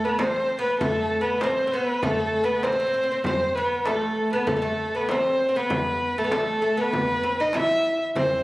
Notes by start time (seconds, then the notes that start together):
0.04 B3 B4
0.19 C4 C5, darbuka tek, frame drum
0.50 darbuka ka
0.59 B3 B4
0.79 A3 A4, darbuka dum, frame drum
1.10 darbuka ka
1.21 B3 B4
1.41 C4 C5, darbuka tek, frame drum
1.57 darbuka ka
1.67 C4
1.71 B3 B4, darbuka ka
1.88 darbuka ka
2.03 A3 A4, darbuka dum, frame drum
2.18 darbuka ka
2.33 darbuka ka
2.44 B3 B4
2.63 C4 C5, darbuka tek, frame drum
2.72 C4
2.80 C4
2.87 C4
2.94 C4, darbuka ka
3.03 C4
3.09 C4, darbuka ka
3.24 C4 C5, darbuka dum, frame drum
3.55 B3 B4
3.85 A3 A4, darbuka tek, frame drum
4.01 darbuka ka
4.16 darbuka ka
4.31 B3 B4, darbuka ka
4.47 A3 A4, darbuka dum, frame drum
4.56 G3
4.62 A3
4.78 darbuka ka
4.95 B3 B4
5.08 C4 C5, darbuka tek, frame drum
5.39 darbuka ka
5.49 C4
5.56 B3 B4
5.70 darbuka dum, frame drum
6.18 A3 A4
6.24 B3
6.31 A3, darbuka tek, frame drum
6.48 darbuka ka
6.62 A3, darbuka ka
6.77 B3 B4, darbuka ka
6.93 darbuka dum, frame drum
7.23 C4, darbuka ka
7.40 D#4 D#5
7.53 E4 E5, darbuka tek, frame drum
7.85 darbuka ka
8.15 C4 C5, darbuka dum, frame drum